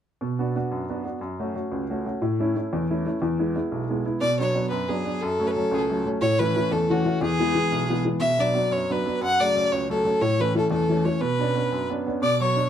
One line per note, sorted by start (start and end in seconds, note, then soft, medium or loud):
0.21 0.55 B2 medium
0.39 0.54 B3 soft
0.39 0.55 D4 soft
0.39 0.55 F#4 medium
0.56 0.83 B3 soft
0.56 0.84 D4 soft
0.56 0.84 F#4 soft
0.71 1.05 F#2 medium
0.89 1.03 B3 soft
0.89 1.04 D4 soft
0.89 1.04 F#4 soft
1.05 1.18 B3 soft
1.05 1.18 D4 soft
1.05 1.18 F#4 soft
1.21 1.55 F#2 medium
1.40 1.53 A3 soft
1.40 1.54 C#4 soft
1.40 1.54 F#4 soft
1.54 1.82 A3 soft
1.54 1.83 C#4 soft
1.54 1.83 F#4 soft
1.71 2.05 C#2 soft
1.90 2.04 A3 soft
1.90 2.04 C#4 soft
1.90 2.05 F#4 medium
2.06 2.18 A3 soft
2.06 2.19 C#4 soft
2.06 2.19 F#4 soft
2.22 2.55 A2 medium
2.39 2.54 A3 soft
2.39 2.55 C#4 soft
2.39 2.55 E4 medium
2.55 2.83 A3 soft
2.55 2.83 C#4 soft
2.55 2.84 E4 soft
2.73 3.06 E2 medium
2.90 3.04 A3 soft
2.90 3.04 C#4 soft
2.90 3.05 E4 soft
3.06 3.18 A3 soft
3.06 3.19 C#4 soft
3.06 3.19 E4 soft
3.22 3.55 E2 medium
3.39 3.54 G#3 soft
3.39 3.54 B3 soft
3.39 3.54 E4 soft
3.55 3.83 G#3 soft
3.55 3.83 B3 soft
3.55 3.83 E4 soft
3.72 4.05 B1 soft
3.90 4.04 G#3 soft
3.90 4.04 B3 soft
3.90 4.04 E4 soft
4.05 4.18 G#3 soft
4.05 4.18 B3 soft
4.05 4.19 E4 soft
4.21 4.55 B2 medium
4.21 4.38 D5 loud
4.39 4.53 F#3 medium
4.39 4.53 B3 soft
4.39 4.54 D4 medium
4.39 4.69 C#5 medium
4.55 4.82 F#3 soft
4.55 4.83 B3 soft
4.55 4.83 D4 soft
4.69 5.04 F#2 medium
4.69 4.90 B4 medium
4.88 5.04 F#3 soft
4.88 5.04 B3 soft
4.88 5.05 D4 soft
4.88 5.23 G#4 medium
5.05 5.18 F#3 soft
5.05 5.18 B3 soft
5.05 5.19 D4 soft
5.21 5.55 F#2 medium
5.21 5.48 A4 medium
5.40 5.55 F#3 soft
5.40 5.54 A3 soft
5.40 5.55 C#4 medium
5.47 5.76 A4 medium
5.47 5.52 B4 medium
5.56 5.83 F#3 soft
5.56 5.83 A3 soft
5.56 5.84 C#4 soft
5.71 6.05 C#2 medium
5.71 5.79 G#4 medium
5.78 6.06 A4 medium
5.90 6.04 F#3 soft
5.90 6.04 A3 soft
5.90 6.05 C#4 soft
6.05 6.18 F#3 soft
6.05 6.19 A3 soft
6.05 6.19 C#4 soft
6.21 6.55 A2 medium
6.21 6.41 C#5 loud
6.39 6.55 E3 medium
6.39 6.55 A3 soft
6.39 6.56 C#4 medium
6.39 6.73 B4 medium
6.56 6.83 E3 soft
6.56 6.84 A3 soft
6.56 6.84 C#4 soft
6.71 7.05 E2 medium
6.71 6.92 A4 medium
6.90 7.03 E3 soft
6.90 7.04 A3 soft
6.90 7.04 C#4 medium
6.90 7.21 F#4 medium
7.05 7.18 E3 soft
7.05 7.18 A3 soft
7.05 7.18 C#4 soft
7.21 7.55 E2 medium
7.21 8.02 G#4 loud
7.39 7.53 E3 soft
7.39 7.54 G#3 soft
7.39 7.54 B3 soft
7.55 7.83 E3 soft
7.55 7.83 G#3 soft
7.55 7.83 B3 soft
7.72 8.05 B1 medium
7.90 8.03 E3 soft
7.90 8.04 G#3 soft
7.90 8.04 B3 soft
8.05 8.18 E3 soft
8.05 8.18 G#3 soft
8.05 8.19 B3 soft
8.20 8.54 B2 medium
8.20 8.42 E5 loud
8.38 8.53 F#3 medium
8.38 8.53 B3 soft
8.38 8.54 D4 medium
8.38 8.74 D5 medium
8.54 8.82 F#3 soft
8.54 8.83 B3 soft
8.54 8.83 D4 soft
8.71 9.05 F#2 medium
8.71 8.93 C#5 medium
8.90 9.04 F#3 soft
8.90 9.04 B3 soft
8.90 9.05 D4 soft
8.90 9.22 B4 medium
9.05 9.18 F#3 soft
9.05 9.19 B3 soft
9.05 9.19 D4 soft
9.21 9.55 F#2 medium
9.21 9.42 F#5 loud
9.39 9.66 C#3 medium
9.39 9.54 F#3 soft
9.39 9.54 A3 soft
9.39 9.73 D5 loud
9.55 9.83 F#3 soft
9.55 9.83 A3 soft
9.55 9.84 C#4 soft
9.72 10.05 C#2 medium
9.72 9.90 C#5 medium
9.90 10.03 F#3 soft
9.90 10.04 A3 soft
9.90 10.04 C#4 medium
9.90 10.23 A4 medium
10.04 10.18 F#3 soft
10.04 10.18 A3 soft
10.04 10.18 C#4 soft
10.21 10.55 A2 medium
10.21 10.42 C#5 loud
10.40 10.54 E3 soft
10.40 10.54 A3 soft
10.40 10.54 C#4 medium
10.40 10.57 B4 medium
10.55 10.83 E3 soft
10.55 10.83 A3 soft
10.55 10.84 C#4 soft
10.55 10.70 A4 medium
10.70 11.05 E2 medium
10.70 11.06 A4 medium
10.89 11.04 E3 soft
10.89 11.04 A3 soft
10.89 11.05 C#4 soft
11.05 11.18 E3 soft
11.05 11.19 A3 soft
11.05 11.19 C#4 soft
11.05 11.22 C#5 medium
11.21 11.55 B2 medium
11.21 11.90 B4 medium
11.39 11.54 B3 soft
11.39 11.55 C#4 soft
11.39 11.55 D4 medium
11.56 11.83 B3 soft
11.56 11.84 C#4 soft
11.56 11.84 D4 soft
11.72 12.06 F#2 medium
11.90 12.05 B3 soft
11.90 12.06 C#4 soft
11.90 12.06 D4 soft
12.07 12.19 B3 soft
12.07 12.20 C#4 soft
12.07 12.20 D4 soft
12.22 12.69 B2 medium
12.22 12.40 D5 loud
12.22 12.43 D6 medium
12.40 12.56 F#3 medium
12.40 12.69 C#5 medium
12.40 12.69 C#6 medium
12.56 12.69 D4 medium